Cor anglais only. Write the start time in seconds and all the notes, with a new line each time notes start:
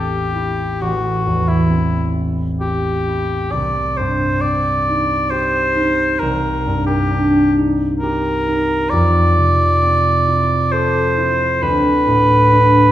Already playing: G4
0.81 F#4
1.48 E4
2.61 G4
3.52 D5
3.97 C5
4.41 D5
5.30 C5
6.19 A#4
6.87 G4
8.00 A#4
8.90 D5
10.72 C5
11.62 B4